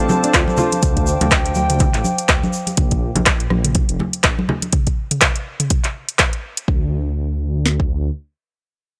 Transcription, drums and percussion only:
0.09 high conga loud
0.09 low conga medium
0.09 shaker loud
0.23 closed hi-hat soft
0.23 shaker soft
0.33 kick loud
0.33 cross-stick loud
0.33 clap loud
0.33 closed hi-hat medium
0.33 shaker soft
0.48 high conga medium
0.48 shaker soft
0.57 low conga loud
0.57 shaker medium
0.72 closed hi-hat soft
0.72 high conga medium
0.72 shaker soft
0.82 kick loud
0.82 closed hi-hat medium
0.82 mid tom medium
0.82 shaker medium
0.97 kick medium
0.97 closed hi-hat soft
0.97 shaker soft
1.07 shaker medium
1.21 closed hi-hat soft
1.21 mid tom medium
1.21 high conga medium
1.21 low conga medium
1.21 shaker soft
1.31 kick loud
1.31 cross-stick loud
1.31 clap loud
1.31 closed hi-hat medium
1.31 shaker soft
1.45 closed hi-hat soft
1.45 shaker soft
1.55 high conga medium
1.55 shaker medium
1.70 closed hi-hat soft
1.70 mid tom loud
1.70 shaker soft
1.79 kick loud
1.79 closed hi-hat medium
1.79 high conga medium
1.79 low conga loud
1.79 shaker soft
1.94 clap soft
1.94 closed hi-hat soft
1.94 shaker soft
2.04 high conga medium
2.04 shaker loud
2.18 closed hi-hat soft
2.18 shaker soft
2.29 kick loud
2.29 cross-stick loud
2.29 clap loud
2.29 closed hi-hat medium
2.29 shaker soft
2.43 high conga medium
2.43 shaker soft
2.53 shaker medium
2.67 closed hi-hat soft
2.67 high conga medium
2.67 shaker soft
2.77 kick loud
2.77 closed hi-hat medium
2.77 mid tom medium
2.91 kick medium
2.91 closed hi-hat soft
3.15 closed hi-hat soft
3.15 high conga medium
3.15 low conga medium
3.26 kick loud
3.26 cross-stick loud
3.26 clap loud
3.26 closed hi-hat medium
3.40 closed hi-hat soft
3.50 cross-stick medium
3.50 high conga medium
3.65 closed hi-hat soft
3.65 mid tom loud
3.75 kick loud
3.75 closed hi-hat medium
3.75 high conga medium
3.89 closed hi-hat soft
3.99 high conga medium
3.99 low conga medium
4.13 closed hi-hat soft
4.24 kick loud
4.24 cross-stick loud
4.24 clap loud
4.24 closed hi-hat medium
4.39 high conga medium
4.49 low conga loud
4.62 closed hi-hat soft
4.62 high conga medium
4.73 kick loud
4.73 closed hi-hat medium
4.73 mid tom medium
4.87 kick medium
4.87 closed hi-hat soft
5.11 closed hi-hat soft
5.11 mid tom medium
5.21 kick loud
5.21 cross-stick loud
5.21 clap loud
5.21 closed hi-hat medium
5.36 closed hi-hat soft
5.60 closed hi-hat soft
5.60 mid tom loud
5.70 kick loud
5.70 closed hi-hat medium
5.84 clap soft
5.84 closed hi-hat soft
6.09 closed hi-hat soft
6.19 kick loud
6.19 cross-stick loud
6.19 clap loud
6.19 closed hi-hat medium
6.33 closed hi-hat soft
6.57 closed hi-hat soft
6.68 kick loud
7.66 snare medium
7.80 kick medium

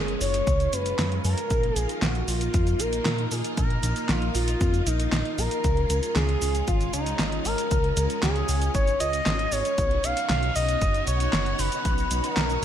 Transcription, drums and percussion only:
0.08 closed hi-hat soft
0.21 open hi-hat medium
0.21 cabasa medium
0.34 closed hi-hat medium
0.34 cabasa soft
0.47 kick loud
0.47 closed hi-hat medium
0.47 cabasa soft
0.60 closed hi-hat soft
0.60 cabasa soft
0.73 closed hi-hat medium
0.73 cabasa medium
0.86 closed hi-hat medium
0.86 cabasa soft
0.99 snare loud
0.99 clap medium
0.99 closed hi-hat medium
0.99 cabasa soft
1.12 closed hi-hat soft
1.25 open hi-hat medium
1.25 cabasa medium
1.38 closed hi-hat medium
1.38 cabasa soft
1.50 kick loud
1.50 closed hi-hat medium
1.50 cabasa soft
1.63 closed hi-hat soft
1.76 closed hi-hat medium
1.76 cabasa medium
1.89 closed hi-hat medium
1.89 cabasa soft
2.02 snare loud
2.02 clap medium
2.02 closed hi-hat medium
2.02 cabasa soft
2.15 closed hi-hat soft
2.28 open hi-hat medium
2.28 cabasa medium
2.41 closed hi-hat medium
2.41 cabasa soft
2.54 kick loud
2.54 closed hi-hat medium
2.54 cabasa soft
2.67 closed hi-hat soft
2.67 cabasa soft
2.80 closed hi-hat medium
2.80 cabasa medium
2.93 closed hi-hat medium
2.93 cabasa soft
3.06 snare loud
3.06 clap medium
3.06 closed hi-hat medium
3.06 cabasa soft
3.18 closed hi-hat soft
3.31 open hi-hat medium
3.31 cabasa medium
3.44 closed hi-hat medium
3.44 cabasa soft
3.57 kick loud
3.57 closed hi-hat medium
3.57 cabasa soft
3.70 closed hi-hat soft
3.83 closed hi-hat medium
3.83 cabasa medium
3.96 closed hi-hat medium
3.96 cabasa soft
4.09 snare loud
4.09 clap medium
4.09 closed hi-hat medium
4.09 cabasa soft
4.22 closed hi-hat soft
4.35 open hi-hat medium
4.35 cabasa medium
4.48 closed hi-hat medium
4.48 cabasa soft
4.61 kick loud
4.61 closed hi-hat medium
4.61 cabasa soft
4.74 closed hi-hat soft
4.74 cabasa soft
4.87 closed hi-hat medium
4.87 cabasa medium
5.00 closed hi-hat medium
5.00 cabasa soft
5.12 snare loud
5.12 clap medium
5.12 closed hi-hat medium
5.12 cabasa soft
5.25 closed hi-hat soft
5.38 open hi-hat medium
5.38 cabasa medium
5.51 closed hi-hat medium
5.51 cabasa soft
5.64 kick loud
5.64 closed hi-hat medium
5.64 cabasa soft
5.77 closed hi-hat soft
5.90 closed hi-hat medium
5.90 cabasa medium
6.03 closed hi-hat soft
6.03 cabasa soft
6.16 snare loud
6.16 clap medium
6.16 closed hi-hat soft
6.16 cabasa soft
6.29 closed hi-hat soft
6.42 open hi-hat medium
6.42 cabasa medium
6.55 closed hi-hat medium
6.55 cabasa soft
6.68 kick loud
6.68 closed hi-hat medium
6.68 cabasa soft
6.81 closed hi-hat soft
6.81 cabasa soft
6.93 closed hi-hat medium
6.93 cabasa medium
7.06 closed hi-hat soft
7.06 cabasa soft
7.19 snare loud
7.19 clap loud
7.19 closed hi-hat medium
7.19 cabasa soft
7.32 closed hi-hat soft
7.45 open hi-hat medium
7.45 cabasa medium
7.58 closed hi-hat medium
7.58 cabasa soft
7.71 kick loud
7.71 closed hi-hat medium
7.71 cabasa soft
7.84 closed hi-hat soft
7.97 closed hi-hat medium
7.97 cabasa medium
8.10 closed hi-hat medium
8.10 cabasa soft
8.23 snare loud
8.23 clap loud
8.23 closed hi-hat medium
8.23 cabasa soft
8.36 closed hi-hat soft
8.49 open hi-hat medium
8.49 cabasa medium
8.62 closed hi-hat medium
8.62 cabasa soft
8.75 kick loud
8.75 closed hi-hat medium
8.75 cabasa soft
8.87 closed hi-hat soft
8.87 cabasa soft
9.00 closed hi-hat medium
9.00 cabasa medium
9.13 closed hi-hat medium
9.13 cabasa soft
9.26 snare loud
9.26 clap loud
9.26 closed hi-hat soft
9.26 cabasa soft
9.39 closed hi-hat soft
9.52 open hi-hat medium
9.52 cabasa medium
9.65 closed hi-hat medium
9.65 cabasa soft
9.78 kick loud
9.78 closed hi-hat medium
9.78 cabasa soft
9.91 closed hi-hat soft
10.04 closed hi-hat medium
10.04 cabasa medium
10.17 closed hi-hat medium
10.17 cabasa soft
10.30 snare loud
10.30 clap loud
10.30 closed hi-hat medium
10.30 cabasa soft
10.43 closed hi-hat soft
10.56 open hi-hat medium
10.56 cabasa medium
10.69 closed hi-hat medium
10.69 cabasa soft
10.81 kick loud
10.81 closed hi-hat medium
10.81 cabasa soft
10.94 closed hi-hat soft
10.94 cabasa soft
11.07 closed hi-hat medium
11.07 cabasa medium
11.20 closed hi-hat soft
11.20 cabasa soft
11.33 snare loud
11.33 clap loud
11.33 closed hi-hat medium
11.33 cabasa soft
11.46 closed hi-hat soft
11.59 open hi-hat medium
11.59 cabasa medium
11.72 closed hi-hat medium
11.72 cabasa soft
11.85 kick loud
11.85 closed hi-hat medium
11.85 cabasa soft
11.98 closed hi-hat soft
11.98 cabasa soft
12.11 closed hi-hat medium
12.11 cabasa medium
12.24 closed hi-hat medium
12.24 cabasa soft
12.37 snare loud
12.37 clap loud
12.37 closed hi-hat medium
12.37 cabasa soft
12.50 closed hi-hat soft
12.50 cabasa soft

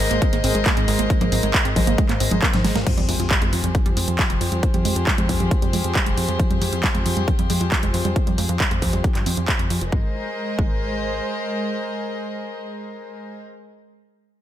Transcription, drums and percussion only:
0.11 closed hi-hat medium
0.22 kick loud
0.22 closed hi-hat medium
0.33 closed hi-hat medium
0.44 open hi-hat loud
0.55 closed hi-hat medium
0.66 kick loud
0.66 clap loud
0.66 closed hi-hat medium
0.77 closed hi-hat medium
0.88 open hi-hat medium
0.99 closed hi-hat medium
1.10 kick loud
1.10 closed hi-hat medium
1.21 closed hi-hat medium
1.21 high conga medium
1.32 open hi-hat loud
1.43 closed hi-hat medium
1.54 kick loud
1.54 clap loud
1.54 closed hi-hat medium
1.65 closed hi-hat medium
1.76 kick medium
1.76 open hi-hat medium
1.76 high conga medium
1.87 closed hi-hat medium
1.98 kick loud
1.98 closed hi-hat medium
2.09 clap soft
2.09 closed hi-hat medium
2.20 open hi-hat loud
2.31 closed hi-hat medium
2.31 high conga medium
2.42 kick loud
2.42 clap loud
2.42 closed hi-hat medium
2.54 snare medium
2.54 closed hi-hat medium
2.54 high conga medium
2.65 snare medium
2.65 open hi-hat medium
2.76 snare medium
2.76 closed hi-hat medium
2.87 kick loud
2.87 closed hi-hat medium
2.87 crash medium
2.98 closed hi-hat medium
3.09 open hi-hat loud
3.20 closed hi-hat medium
3.31 kick loud
3.31 clap loud
3.31 closed hi-hat medium
3.42 closed hi-hat medium
3.53 open hi-hat medium
3.64 closed hi-hat medium
3.75 kick loud
3.75 closed hi-hat medium
3.86 closed hi-hat medium
3.97 open hi-hat loud
4.08 closed hi-hat medium
4.19 kick loud
4.19 clap loud
4.19 closed hi-hat medium
4.30 closed hi-hat medium
4.41 open hi-hat medium
4.52 closed hi-hat medium
4.63 kick loud
4.63 closed hi-hat medium
4.74 closed hi-hat medium
4.85 open hi-hat loud
4.96 closed hi-hat medium
5.07 kick loud
5.07 clap loud
5.07 closed hi-hat medium
5.18 closed hi-hat medium
5.29 kick medium
5.29 open hi-hat medium
5.40 closed hi-hat medium
5.51 kick loud
5.51 closed hi-hat medium
5.62 closed hi-hat medium
5.73 open hi-hat loud
5.84 closed hi-hat medium
5.95 kick loud
5.95 clap loud
5.95 closed hi-hat medium
6.06 closed hi-hat medium
6.17 open hi-hat medium
6.29 closed hi-hat medium
6.40 kick loud
6.40 closed hi-hat medium
6.51 closed hi-hat medium
6.62 open hi-hat loud
6.73 closed hi-hat medium
6.84 kick loud
6.84 clap loud
6.84 closed hi-hat medium
6.95 closed hi-hat medium
7.06 open hi-hat medium
7.17 closed hi-hat medium
7.28 kick loud
7.28 closed hi-hat medium
7.39 closed hi-hat medium
7.50 open hi-hat loud
7.61 closed hi-hat medium
7.72 kick loud
7.72 clap loud
7.72 closed hi-hat medium
7.83 closed hi-hat medium
7.94 open hi-hat medium
8.05 closed hi-hat medium
8.16 kick loud
8.16 closed hi-hat medium
8.27 closed hi-hat medium
8.38 open hi-hat loud
8.49 closed hi-hat medium
8.60 kick loud
8.60 clap loud
8.60 closed hi-hat medium
8.71 closed hi-hat medium
8.82 kick medium
8.82 open hi-hat medium
8.93 closed hi-hat medium
9.04 kick loud
9.04 closed hi-hat medium
9.15 clap soft
9.15 closed hi-hat medium
9.26 open hi-hat loud
9.37 closed hi-hat medium
9.48 kick loud
9.48 clap loud
9.48 closed hi-hat medium
9.59 closed hi-hat medium
9.70 open hi-hat medium
9.81 closed hi-hat medium
9.92 kick loud
10.59 kick loud

